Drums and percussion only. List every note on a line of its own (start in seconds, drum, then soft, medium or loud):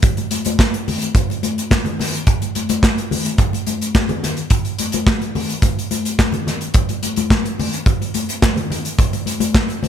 0.02 kick loud
0.02 closed hi-hat medium
0.02 muted conga soft
0.17 closed hi-hat soft
0.17 muted conga soft
0.31 closed hi-hat medium
0.31 high conga medium
0.45 closed hi-hat medium
0.45 high conga medium
0.59 kick loud
0.59 snare loud
0.59 clap medium
0.59 muted conga soft
0.74 closed hi-hat medium
0.74 muted conga soft
0.88 open hi-hat medium
0.88 high conga medium
0.88 low conga medium
1.02 closed hi-hat medium
1.15 kick loud
1.15 closed hi-hat medium
1.30 closed hi-hat soft
1.30 muted conga soft
1.43 closed hi-hat medium
1.43 high conga medium
1.58 closed hi-hat soft
1.71 kick loud
1.71 snare loud
1.71 clap loud
1.71 high conga medium
1.85 closed hi-hat soft
1.85 muted conga soft
1.85 low conga medium
1.99 snare soft
1.99 open hi-hat medium
1.99 low conga medium
2.14 closed hi-hat soft
2.27 kick loud
2.27 closed hi-hat medium
2.42 closed hi-hat soft
2.42 muted conga soft
2.55 closed hi-hat medium
2.55 high conga medium
2.69 closed hi-hat medium
2.69 high conga loud
2.83 kick loud
2.83 snare loud
2.83 clap medium
2.98 closed hi-hat medium
2.98 muted conga soft
3.11 open hi-hat medium
3.11 high conga medium
3.11 low conga medium
3.25 closed hi-hat medium
3.38 kick loud
3.38 closed hi-hat medium
3.38 muted conga soft
3.53 closed hi-hat soft
3.53 muted conga soft
3.67 closed hi-hat medium
3.67 high conga medium
3.81 closed hi-hat medium
3.94 kick loud
3.94 snare loud
3.94 clap loud
3.94 muted conga soft
3.94 high conga medium
4.09 closed hi-hat soft
4.09 muted conga soft
4.09 low conga medium
4.23 snare soft
4.23 closed hi-hat medium
4.23 low conga medium
4.37 closed hi-hat soft
4.50 kick loud
4.50 closed hi-hat medium
4.65 closed hi-hat soft
4.79 closed hi-hat medium
4.79 high conga medium
4.92 closed hi-hat medium
4.92 high conga medium
5.07 kick loud
5.07 snare loud
5.07 clap medium
5.21 closed hi-hat medium
5.21 muted conga soft
5.35 open hi-hat medium
5.35 high conga medium
5.35 low conga medium
5.49 closed hi-hat medium
5.62 kick loud
5.62 closed hi-hat medium
5.62 muted conga soft
5.79 closed hi-hat soft
5.91 closed hi-hat medium
5.91 high conga medium
6.05 closed hi-hat medium
6.19 kick loud
6.19 snare loud
6.19 clap medium
6.19 high conga medium
6.32 closed hi-hat soft
6.32 muted conga soft
6.32 low conga medium
6.47 snare soft
6.47 closed hi-hat medium
6.47 low conga medium
6.61 closed hi-hat soft
6.74 kick loud
6.74 closed hi-hat medium
6.74 muted conga soft
6.89 closed hi-hat soft
6.89 muted conga soft
7.03 closed hi-hat medium
7.03 high conga medium
7.16 closed hi-hat medium
7.16 high conga loud
7.30 kick loud
7.30 snare loud
7.30 clap medium
7.30 muted conga soft
7.45 closed hi-hat medium
7.45 muted conga soft
7.59 open hi-hat medium
7.59 high conga medium
7.59 low conga medium
7.73 closed hi-hat medium
7.86 kick loud
7.86 closed hi-hat medium
8.01 closed hi-hat soft
8.01 muted conga soft
8.14 closed hi-hat medium
8.14 high conga medium
8.29 closed hi-hat medium
8.42 kick loud
8.42 snare loud
8.42 clap loud
8.42 muted conga soft
8.42 high conga medium
8.56 closed hi-hat soft
8.56 low conga medium
8.70 closed hi-hat medium
8.70 low conga medium
8.85 closed hi-hat soft
8.98 kick loud
8.98 closed hi-hat medium
8.98 muted conga soft
9.13 closed hi-hat soft
9.13 muted conga soft
9.26 closed hi-hat medium
9.26 high conga medium
9.40 closed hi-hat medium
9.40 high conga loud
9.54 kick loud
9.54 snare loud
9.54 clap medium
9.54 muted conga soft
9.69 closed hi-hat medium
9.69 muted conga soft
9.83 open hi-hat medium
9.83 high conga medium
9.83 low conga medium